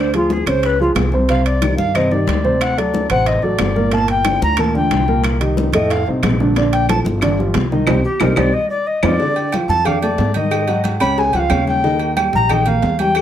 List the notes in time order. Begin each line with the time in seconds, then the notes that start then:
Already playing: D2 C5
0.14 F3 F4 G#4, high conga, high timbale
0.30 G#4, high bongo, high conga
0.46 C#2 C#3 C#4 C5 C#5, high bongo, high conga, high timbale, claves
0.63 B4, high bongo, high conga, high timbale
0.80 F3 F4 G#4, high bongo, high conga
0.95 C2, high bongo, low bongo, high conga, high timbale, low timbale, claves
1.12 C3 C4 C5, high bongo, high conga
1.29 C3 C4 C5 F5, high bongo, high timbale
1.45 D5, high conga, high timbale
1.62 D#3 D#4 G4, high bongo, high conga, high timbale, claves
1.77 G2 F5, high conga
1.94 C3 C4 C5 D#5, high bongo, high conga, low conga, high timbale, claves
2.11 D#3 D#4 G4 D5, high conga, low conga
2.27 D2, high bongo, low bongo, high conga, high timbale
2.44 C3 C4 C5, high conga
2.61 F#5, high bongo, high conga, high timbale, claves
2.77 F#3 F#4 A4 D5, high conga, high timbale
2.94 high bongo, high conga
3.10 A1 C3 C4 C5 F#5, high bongo, high conga, high timbale, claves
3.26 D#5, high bongo, high conga, high timbale
3.42 A1 F#3 F#4 A4 D5, high bongo, high conga
3.59 G1, high bongo, low bongo, high conga, high timbale, low timbale, claves
3.76 A#2 A#3 A#4, high bongo, high conga
3.91 A#2 A#3 A#4 A5, high bongo, high conga, high timbale
4.08 G5, high conga, high timbale
4.25 D3 D4 F4, high bongo, high conga, high timbale, claves
4.42 D2 A#5, high conga
4.57 A#2 A#3 A#4 A5, high bongo, high conga, low conga, high timbale, claves
4.74 D3 D4 F4 G5, high conga, low conga
4.91 C2, high bongo, low bongo, high conga, high timbale
5.08 A#2 A#3 A#4, high conga
5.24 high bongo, high conga, high timbale, claves
5.40 D#3 D#4 G4, high conga, high timbale
5.57 high bongo, high conga
5.72 F2 A2 A3 A4 D#5, high bongo, high conga, high timbale, claves
5.90 F5, high bongo, high conga, high timbale
6.06 C2 C3 C4 D#4, high bongo, high conga
6.23 A#1, high bongo, low bongo, high conga, high timbale, low timbale, claves
6.40 D3 D4 D5, high bongo, high conga
6.56 D3 D4 D5, high bongo, high conga, high timbale
6.72 G5, high conga, high timbale
6.89 F3 F4 A4 A5, high bongo, high conga, high timbale, claves
7.05 G1, high conga
7.21 D3 D4 D5, high bongo, high conga, low conga, high timbale, claves
7.39 F3 F4 G4, high conga, low conga
7.54 C2, high bongo, low bongo, high conga, high timbale, low timbale
7.72 D#3 D#4 D#5, high conga
7.87 C2 C4 D#4 G4, low bongo, high conga, high timbale, claves
8.04 G4
8.20 C2 C4 D#4 G4 A#4, low bongo, high conga, high timbale, claves
8.36 C2 C4 D#4 G4 D5, low bongo, high conga, high timbale, claves
8.53 D#5
8.70 D5
8.87 D#5
9.03 F2 C4 D#4 F4 D5, low bongo, high conga, high timbale, claves
9.20 D3 D4 D5, cowbell, high conga
9.36 high conga, low agogo
9.52 F3 F4 F5, cowbell, high conga, low agogo, claves
9.68 F2 A5, high conga
9.85 D4 D5 F5 D6, cowbell, high conga, low conga, low agogo, claves
10.01 A3 A4 D5 A5, high conga, low agogo
10.18 G#2, cowbell, high conga, low timbale
10.34 D#3 D#4 D#5, high conga, low agogo
10.51 cowbell, high conga, low agogo, claves
10.68 F#3 F#4 F#5, cowbell, low agogo
10.84 cowbell, high conga, low agogo
11.00 C#2 C#3 C#4 C#5 B5, cowbell, high conga, low agogo, claves
11.18 G#5, cowbell, high conga
11.33 C#2 F3 F4 F5 F#5, cowbell, high conga, low agogo
11.39 F5
11.50 D#2 C#3 C#4 C#5, cowbell, high conga, low timbale, low agogo, claves
11.67 G5, cowbell, high conga
11.84 D#3 D#4 D#5, cowbell, high conga
11.99 high conga, low agogo
12.17 G3 G4 G5, cowbell, high conga, low agogo, claves
12.33 A#1 A#5, high conga
12.49 D#4 D#5 G5 D#6, cowbell, high conga, low conga, low agogo, claves
12.66 A#3 A#4 F5 A#5, high conga, low conga, low agogo
12.82 E2, cowbell, high conga, low timbale
12.99 G3 G4 G5, high conga, low agogo
13.15 cowbell, high conga, low agogo, claves